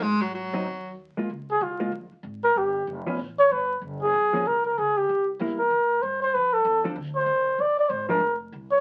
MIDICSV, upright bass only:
0, 0, Header, 1, 3, 480
1, 0, Start_track
1, 0, Tempo, 314630
1, 53, Time_signature, 4, 2, 24, 8
1, 13431, End_track
2, 0, Start_track
2, 0, Title_t, "Upright bass"
2, 0, Program_c, 0, 32
2, 28, Note_on_c, 0, 32, 72
2, 956, Note_off_c, 0, 32, 0
2, 997, Note_on_c, 0, 39, 73
2, 1731, Note_off_c, 0, 39, 0
2, 1976, Note_on_c, 0, 37, 75
2, 2446, Note_off_c, 0, 37, 0
2, 2452, Note_on_c, 0, 36, 90
2, 2918, Note_off_c, 0, 36, 0
2, 2927, Note_on_c, 0, 34, 75
2, 3210, Note_off_c, 0, 34, 0
2, 3403, Note_on_c, 0, 32, 84
2, 3880, Note_off_c, 0, 32, 0
2, 3898, Note_on_c, 0, 31, 83
2, 4368, Note_off_c, 0, 31, 0
2, 4382, Note_on_c, 0, 29, 90
2, 4850, Note_off_c, 0, 29, 0
2, 4869, Note_on_c, 0, 33, 79
2, 5333, Note_off_c, 0, 33, 0
2, 5355, Note_on_c, 0, 31, 83
2, 5810, Note_off_c, 0, 31, 0
2, 5819, Note_on_c, 0, 30, 81
2, 6288, Note_off_c, 0, 30, 0
2, 6306, Note_on_c, 0, 34, 92
2, 6772, Note_off_c, 0, 34, 0
2, 6795, Note_on_c, 0, 36, 80
2, 7256, Note_off_c, 0, 36, 0
2, 7290, Note_on_c, 0, 37, 84
2, 7743, Note_off_c, 0, 37, 0
2, 7767, Note_on_c, 0, 36, 82
2, 8222, Note_off_c, 0, 36, 0
2, 8230, Note_on_c, 0, 40, 88
2, 8692, Note_off_c, 0, 40, 0
2, 8701, Note_on_c, 0, 45, 82
2, 9167, Note_off_c, 0, 45, 0
2, 9195, Note_on_c, 0, 43, 79
2, 9654, Note_off_c, 0, 43, 0
2, 9680, Note_on_c, 0, 41, 77
2, 10131, Note_off_c, 0, 41, 0
2, 10140, Note_on_c, 0, 40, 94
2, 10602, Note_off_c, 0, 40, 0
2, 10611, Note_on_c, 0, 38, 83
2, 11070, Note_off_c, 0, 38, 0
2, 11079, Note_on_c, 0, 35, 83
2, 11553, Note_off_c, 0, 35, 0
2, 11570, Note_on_c, 0, 34, 79
2, 12039, Note_off_c, 0, 34, 0
2, 12045, Note_on_c, 0, 32, 96
2, 12498, Note_off_c, 0, 32, 0
2, 12507, Note_on_c, 0, 29, 83
2, 12986, Note_off_c, 0, 29, 0
2, 13004, Note_on_c, 0, 36, 86
2, 13431, Note_off_c, 0, 36, 0
2, 13431, End_track
3, 0, Start_track
3, 0, Title_t, "Muted upright bass strokes"
3, 1780, Note_on_c, 9, 29, 28
3, 1933, Note_off_c, 9, 29, 0
3, 3234, Note_on_c, 9, 29, 37
3, 3387, Note_off_c, 9, 29, 0
3, 13431, End_track
0, 0, End_of_file